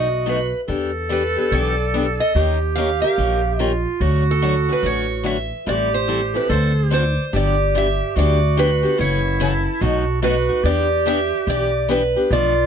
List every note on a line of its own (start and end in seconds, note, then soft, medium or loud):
0.00 0.52 B1 medium
0.00 0.53 F#4 medium
0.00 0.29 D#5 medium
0.26 0.38 B2 medium
0.26 0.38 F#3 medium
0.26 0.38 A3 medium
0.26 0.38 D#4 medium
0.26 0.38 F#4 medium
0.26 0.60 B4 medium
0.68 1.35 E2 medium
0.68 0.90 E3 medium
0.68 0.90 B3 medium
0.68 0.90 D4 medium
0.68 0.90 G4 medium
0.68 2.31 A4 loud
1.09 1.21 E3 medium
1.09 1.21 B3 medium
1.09 1.21 D4 medium
1.09 1.22 G4 medium
1.09 1.54 B4 medium
1.37 1.51 B3 soft
1.37 1.51 D4 medium
1.37 1.51 G4 medium
1.51 2.18 B1 medium
1.51 1.74 E3 medium
1.51 1.74 B3 medium
1.51 1.74 D4 medium
1.51 1.74 G4 medium
1.51 2.20 D5 medium
1.94 2.05 E3 medium
1.94 2.05 B3 medium
1.94 2.05 D4 medium
1.94 2.05 G4 medium
2.20 2.59 D#5 medium
2.35 3.01 D#2 medium
2.35 2.57 D#3 medium
2.35 2.57 A#3 medium
2.35 2.57 C#4 medium
2.35 3.61 G4 medium
2.35 2.57 G4 medium
2.35 2.57 A#4 medium
2.75 2.88 D#3 medium
2.75 2.89 A#3 medium
2.75 2.89 C#4 medium
2.75 2.89 G4 medium
2.75 2.89 A#4 loud
2.75 3.00 F5 loud
3.02 3.17 C#4 soft
3.02 3.18 G4 soft
3.02 3.17 A#4 medium
3.02 3.60 F5 medium
3.18 3.84 A#1 medium
3.18 3.40 D#3 medium
3.18 3.40 A#3 medium
3.18 3.40 C#4 medium
3.18 3.40 G4 medium
3.18 3.40 A#4 medium
3.59 3.71 D#3 medium
3.59 3.71 A#3 medium
3.59 3.71 C#4 medium
3.59 4.02 F4 medium
3.59 3.71 G4 medium
3.59 3.71 A#4 medium
3.59 3.81 D#5 medium
4.00 4.67 D2 medium
4.00 4.23 D3 medium
4.00 4.23 F#3 medium
4.00 4.23 A3 medium
4.00 4.23 C#4 medium
4.00 5.44 F#4 loud
4.00 4.23 F#4 medium
4.31 4.72 A4 medium
4.42 4.54 D3 medium
4.42 4.54 F#3 loud
4.42 4.54 A3 medium
4.42 4.54 C#4 medium
4.42 4.54 F#4 loud
4.68 4.82 A3 soft
4.68 4.82 C#4 soft
4.68 4.82 F#4 medium
4.72 4.86 B4 medium
4.83 5.50 A1 medium
4.83 5.05 D3 medium
4.83 5.05 F#3 medium
4.83 5.05 A3 medium
4.83 5.05 C#4 medium
4.83 5.06 F#4 medium
4.83 5.24 C#5 medium
5.23 5.36 D3 medium
5.23 5.36 F#3 medium
5.23 5.36 A3 medium
5.23 5.37 C#4 medium
5.23 5.37 F#4 medium
5.23 5.68 E5 loud
5.66 6.33 A1 medium
5.66 5.88 E3 medium
5.66 5.89 G3 medium
5.66 5.89 C4 medium
5.66 5.89 E4 medium
5.66 6.46 G4 medium
5.66 5.89 A4 medium
5.66 5.93 D5 medium
5.94 6.32 C5 medium
6.08 6.20 E3 medium
6.08 6.20 G3 medium
6.08 6.20 C4 medium
6.08 6.20 E4 medium
6.08 6.20 A4 medium
6.34 6.48 C4 soft
6.34 6.49 E4 soft
6.34 6.48 A4 medium
6.34 6.51 B4 medium
6.49 7.16 D2 medium
6.49 6.71 D3 medium
6.49 6.71 A3 medium
6.49 6.71 C4 medium
6.49 6.72 F#4 medium
6.49 7.14 A4 medium
6.49 6.71 A4 medium
6.49 6.92 C5 medium
6.90 7.02 D3 medium
6.90 7.03 A3 medium
6.90 7.03 C4 medium
6.90 7.03 F#4 medium
6.90 7.03 A4 medium
6.90 7.35 C5 medium
6.90 7.24 D5 medium
7.33 8.00 G1 medium
7.33 7.55 D3 medium
7.33 7.55 F#3 medium
7.33 7.55 B3 medium
7.33 7.55 D4 medium
7.33 8.17 G4 medium
7.33 7.55 G4 medium
7.33 7.73 D5 medium
7.75 7.86 D3 medium
7.75 7.86 F#3 medium
7.75 7.86 B3 medium
7.75 7.87 D4 medium
7.75 7.87 G4 medium
7.75 8.15 E5 loud
8.16 8.83 D2 medium
8.16 8.38 D3 medium
8.16 8.38 F#3 medium
8.16 8.38 B3 medium
8.16 8.38 D4 medium
8.16 9.01 F#4 medium
8.16 8.38 G4 medium
8.16 8.60 D5 medium
8.57 8.69 D3 medium
8.57 8.69 F#3 medium
8.57 8.69 B3 medium
8.57 8.69 D4 medium
8.57 8.69 G4 medium
8.57 8.97 B4 medium
8.83 8.98 B3 soft
8.83 8.98 D4 soft
8.83 8.98 G4 medium
8.97 9.66 F#1 medium
8.97 9.20 C#3 medium
8.97 9.20 E3 medium
8.97 9.20 A3 medium
8.97 9.20 C#4 medium
8.97 9.83 E4 medium
8.97 9.20 F#4 medium
8.97 9.38 C#5 loud
9.40 9.52 C#3 medium
9.40 9.52 E3 medium
9.40 9.52 A3 medium
9.40 9.52 C#4 medium
9.40 9.52 F#4 loud
9.40 10.20 A4 medium
9.81 10.48 B1 medium
9.81 10.03 B2 medium
9.81 10.03 F#3 medium
9.81 10.03 A3 medium
9.81 10.03 D#4 medium
9.81 10.21 F#4 medium
9.81 10.04 F#4 medium
10.22 10.34 B2 medium
10.22 10.35 F#3 medium
10.22 10.35 A3 medium
10.22 10.35 D#4 medium
10.22 10.65 F#4 medium
10.22 10.35 F#4 loud
10.22 10.67 B4 medium
10.49 10.64 A3 soft
10.49 10.64 D#4 soft
10.49 10.64 F#4 medium
10.64 11.31 E2 medium
10.64 10.86 E3 medium
10.64 10.86 B3 medium
10.64 10.86 D4 medium
10.64 12.07 G4 loud
10.64 10.87 G4 medium
10.64 11.04 D5 medium
11.06 11.18 E3 medium
11.06 11.18 B3 medium
11.06 11.18 D4 medium
11.06 11.18 G4 loud
11.06 11.46 E5 loud
11.47 12.14 B1 medium
11.47 11.69 E3 medium
11.47 11.69 B3 medium
11.47 11.70 D4 medium
11.47 11.70 G4 medium
11.47 11.88 D5 loud
11.89 12.01 E3 medium
11.89 12.01 B3 medium
11.89 12.01 D4 medium
11.89 12.01 G4 loud
11.89 12.29 B4 medium
12.16 12.31 B3 soft
12.16 12.31 D4 medium
12.16 12.31 G4 medium
12.30 12.66 B1 medium
12.30 12.53 B2 medium
12.30 12.53 F3 medium
12.30 12.53 A3 medium
12.30 12.53 D4 medium
12.30 12.66 F4 loud
12.30 12.53 A4 medium
12.30 12.66 D5 medium